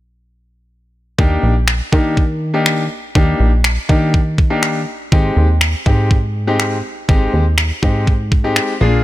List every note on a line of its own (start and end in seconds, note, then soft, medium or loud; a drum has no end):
1.18 1.38 D#2 loud
1.18 1.53 A#3 medium
1.18 1.53 D4 medium
1.18 1.53 D#4 medium
1.18 1.53 G4 medium
1.18 kick loud
1.43 1.82 A#1 medium
1.68 finger snap loud
1.92 2.89 D#3 loud
1.92 2.21 A#3 medium
1.92 2.21 D4 medium
1.92 2.21 D#4 medium
1.92 2.21 G4 medium
1.92 kick loud
2.17 kick medium
2.54 2.82 A#3 medium
2.54 2.82 D4 medium
2.54 2.82 D#4 medium
2.54 2.82 G4 medium
2.66 finger snap loud
3.15 3.35 D#2 loud
3.15 3.49 A#3 medium
3.15 3.49 D4 medium
3.15 3.50 D#4 medium
3.15 3.50 G4 medium
3.15 kick loud
3.40 3.78 A#1 medium
3.64 finger snap loud
3.89 4.85 D#3 medium
3.89 4.17 A#3 medium
3.89 4.17 D4 medium
3.89 4.17 D#4 medium
3.89 4.18 G4 medium
3.89 kick medium
4.14 kick medium
4.38 kick medium
4.50 4.79 A#3 medium
4.50 4.79 D4 medium
4.50 4.79 D#4 medium
4.50 4.79 G4 medium
4.63 finger snap loud
5.12 5.31 G#1 loud
5.12 5.46 G#3 medium
5.12 5.46 C4 medium
5.12 5.46 D#4 medium
5.12 5.46 G4 loud
5.12 kick loud
5.37 5.75 D#2 medium
5.61 finger snap loud
5.86 6.82 G#2 loud
5.86 6.14 G#3 medium
5.86 6.14 C4 medium
5.86 6.14 D#4 medium
5.86 6.14 G4 medium
5.86 kick medium
6.11 kick medium
6.47 6.76 G#3 medium
6.47 6.76 C4 medium
6.47 6.76 D#4 medium
6.47 6.76 G4 medium
6.60 finger snap loud
7.08 7.28 G#1 loud
7.08 7.43 G#3 medium
7.08 7.43 C4 medium
7.08 7.43 D#4 medium
7.08 7.43 G4 loud
7.08 kick loud
7.34 7.72 D#2 medium
7.58 finger snap loud
7.82 8.60 G#2 loud
7.82 8.11 G#3 medium
7.82 8.11 C4 medium
7.82 8.11 D#4 medium
7.82 8.11 G4 medium
7.82 kick medium
8.07 kick medium
8.32 kick medium
8.44 8.72 G#3 medium
8.44 8.72 C4 medium
8.44 8.73 D#4 medium
8.44 8.73 G4 medium
8.56 finger snap loud
8.81 9.04 A#1 loud
8.81 9.04 A#3 medium
8.81 9.04 D4 medium
8.81 9.04 F4 medium
8.81 9.04 G#4 medium